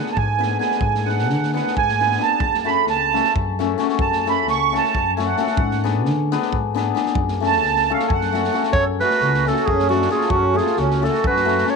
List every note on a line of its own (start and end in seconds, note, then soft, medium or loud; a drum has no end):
0.00 0.11 B3 medium
0.00 0.11 D4 medium
0.00 0.12 G#4 medium
0.00 0.12 B4 medium
0.06 snare soft
0.12 0.17 A5 medium
0.16 0.55 G#2 medium
0.16 0.58 G#5 medium
0.16 kick medium
0.39 0.56 B3 medium
0.39 0.56 D4 medium
0.39 0.56 G#4 medium
0.39 0.57 B4 medium
0.43 snare soft
0.59 0.76 B3 medium
0.59 0.76 D4 medium
0.59 0.77 G#4 soft
0.59 0.77 B4 medium
0.59 1.09 G#5 medium
0.59 snare soft
0.71 snare soft
0.81 1.30 G#2 loud
0.81 kick loud
0.95 snare soft
1.05 1.24 B3 medium
1.05 1.24 D4 medium
1.05 1.25 G#4 medium
1.05 1.25 B4 medium
1.05 1.51 F#5 medium
1.05 snare soft
1.19 snare soft
1.30 1.58 D3 medium
1.30 snare soft
1.43 snare soft
1.54 1.72 B3 medium
1.54 1.72 D4 medium
1.54 1.72 G#4 medium
1.54 1.72 B4 medium
1.54 1.75 F#5 medium
1.54 snare soft
1.67 snare soft
1.77 2.15 G#2 medium
1.77 2.22 G#5 loud
1.77 kick medium
1.89 snare soft
2.00 2.16 B3 medium
2.00 2.17 D4 soft
2.00 2.17 G#4 medium
2.00 2.17 B4 medium
2.00 snare soft
2.12 snare soft
2.18 2.35 B3 medium
2.18 2.36 D4 medium
2.18 2.36 G#4 soft
2.18 2.37 B4 medium
2.18 snare soft
2.22 2.70 A5 medium
2.40 2.88 F#2 medium
2.40 kick loud
2.54 snare soft
2.65 2.83 A3 medium
2.65 2.83 C#4 soft
2.65 2.83 F#4 medium
2.65 2.83 A4 medium
2.65 2.86 B5 medium
2.65 snare soft
2.87 3.17 C#2 medium
2.87 3.34 A5 loud
2.87 snare soft
3.13 3.31 A3 medium
3.13 3.31 C#4 medium
3.13 3.31 F#4 medium
3.13 3.32 A4 medium
3.13 snare soft
3.24 snare soft
3.35 3.74 F#2 medium
3.35 kick medium
3.59 3.75 A3 medium
3.59 3.76 C#4 medium
3.59 3.76 F#4 medium
3.59 3.76 A4 medium
3.59 snare soft
3.78 3.94 A3 medium
3.78 3.95 C#4 medium
3.78 3.95 F#4 medium
3.78 3.96 A4 medium
3.78 snare soft
3.89 snare soft
3.99 4.48 F#2 medium
3.99 4.28 A5 medium
3.99 kick loud
4.13 snare soft
4.26 4.43 A3 medium
4.26 4.43 C#4 medium
4.26 4.43 F#4 medium
4.26 4.43 A4 medium
4.26 4.47 B5 medium
4.26 snare soft
4.48 4.76 C#2 medium
4.48 4.77 C#6 loud
4.48 snare soft
4.72 4.90 A3 medium
4.72 4.90 C#4 medium
4.72 4.90 F#4 medium
4.72 4.90 A4 medium
4.72 snare soft
4.77 5.14 A5 medium
4.84 snare soft
4.95 5.33 F#2 medium
4.95 kick medium
5.16 5.33 A3 medium
5.16 5.34 C#4 medium
5.16 5.34 F#4 medium
5.16 5.34 A4 medium
5.16 5.21 G#5 soft
5.16 snare soft
5.25 5.84 F#5 medium
5.38 5.54 A3 medium
5.38 5.54 C#4 medium
5.38 5.54 F#4 medium
5.38 5.55 A4 medium
5.38 snare soft
5.47 snare soft
5.57 6.05 G#2 loud
5.57 kick loud
5.71 snare soft
5.84 6.01 B3 medium
5.84 6.01 D4 medium
5.84 6.01 G#4 medium
5.84 6.01 B4 medium
5.84 snare soft
6.05 6.34 D3 medium
6.05 snare soft
6.32 6.48 B3 medium
6.32 6.48 D4 medium
6.32 6.49 G#4 medium
6.32 6.49 B4 medium
6.32 snare soft
6.42 snare soft
6.52 6.90 G#2 medium
6.52 kick medium
6.74 6.91 B3 medium
6.74 6.92 D4 medium
6.74 6.92 G#4 medium
6.74 6.92 B4 medium
6.74 snare soft
6.95 7.11 B3 medium
6.95 7.11 D4 medium
6.95 7.12 G#4 medium
6.95 7.12 B4 medium
6.95 snare soft
7.06 snare soft
7.15 7.62 F#2 medium
7.15 kick loud
7.28 snare soft
7.40 7.58 A3 medium
7.40 7.59 C#4 medium
7.40 7.58 F#4 medium
7.40 7.59 A4 medium
7.40 snare soft
7.46 7.93 A5 loud
7.52 snare soft
7.62 7.91 C#2 medium
7.62 snare soft
7.76 snare soft
7.90 8.06 A3 medium
7.90 8.06 C#4 medium
7.90 8.06 F#4 medium
7.90 8.07 A4 medium
7.90 8.06 F5 medium
8.00 snare soft
8.07 8.48 F#2 medium
8.07 8.11 G#5 medium
8.07 kick medium
8.13 8.70 F#5 medium
8.21 snare soft
8.32 8.49 A3 medium
8.32 8.49 C#4 medium
8.32 8.50 F#4 medium
8.32 8.50 A4 medium
8.32 snare soft
8.44 snare soft
8.53 8.69 A3 medium
8.53 8.69 C#4 medium
8.53 8.69 F#4 medium
8.53 8.70 A4 medium
8.53 snare soft
8.63 snare soft
8.73 9.01 F#2 medium
8.73 8.88 A4 medium
8.73 8.85 C#5 loud
8.73 kick loud
9.00 9.16 A3 medium
9.00 9.16 C#4 soft
9.00 9.17 F#4 medium
9.00 9.45 F#4 medium
9.00 9.17 A4 medium
9.00 9.50 B4 loud
9.00 snare soft
9.11 snare soft
9.20 9.49 C#2 medium
9.20 snare soft
9.34 snare soft
9.45 9.62 A3 medium
9.45 9.63 C#4 medium
9.45 9.63 F#4 medium
9.45 9.63 A4 medium
9.45 9.68 A4 medium
9.45 snare soft
9.52 9.70 F#4 medium
9.57 snare soft
9.67 10.06 F#2 medium
9.67 9.92 C#4 medium
9.67 9.89 G#4 loud
9.67 kick medium
9.79 snare soft
9.89 10.05 A3 medium
9.89 10.06 C#4 medium
9.89 10.08 F#4 loud
9.89 10.07 F#4 medium
9.89 10.07 A4 medium
9.89 snare soft
9.95 10.11 D4 medium
10.02 snare soft
10.09 10.25 A3 medium
10.09 10.25 C#4 medium
10.09 10.26 F#4 medium
10.09 10.32 G#4 medium
10.09 10.26 A4 medium
10.09 snare soft
10.14 10.30 F4 medium
10.21 snare soft
10.30 10.58 F#2 medium
10.30 10.57 C#4 medium
10.30 10.58 F#4 loud
10.30 kick medium
10.54 10.71 A3 medium
10.54 10.72 C#4 medium
10.54 10.72 F#4 medium
10.54 10.81 G#4 medium
10.54 10.72 A4 medium
10.54 snare soft
10.60 10.79 F4 medium
10.67 snare soft
10.77 11.06 C#2 medium
10.77 11.05 C#4 medium
10.77 11.06 F#4 medium
10.77 snare soft
10.91 snare soft
11.02 11.19 A3 medium
11.02 11.19 C#4 medium
11.02 11.19 F#4 medium
11.02 11.20 A4 medium
11.02 11.24 A4 medium
11.02 snare soft
11.09 11.26 F#4 medium
11.14 snare soft
11.24 11.62 F#2 medium
11.24 11.66 F#4 medium
11.24 11.72 B4 loud
11.24 kick medium
11.37 snare soft
11.45 11.62 A3 medium
11.45 11.62 C#4 medium
11.45 11.63 F#4 medium
11.45 11.63 A4 medium
11.45 snare soft
11.58 snare soft
11.65 11.76 A3 medium
11.65 11.76 C#4 medium
11.65 11.76 F#4 medium
11.65 11.76 A4 medium
11.65 snare soft
11.70 11.76 A4 medium
11.70 11.76 C#5 medium